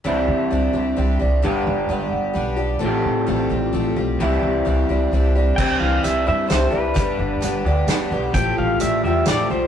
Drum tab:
CC |------|------|------|------|
HH |------|------|------|------|
SD |------|------|------|------|
BD |------|------|------|------|

CC |x-----|------|------|
HH |--x-x-|x-x-x-|x-x-x-|
SD |----o-|----o-|----o-|
BD |o-----|o-----|o-----|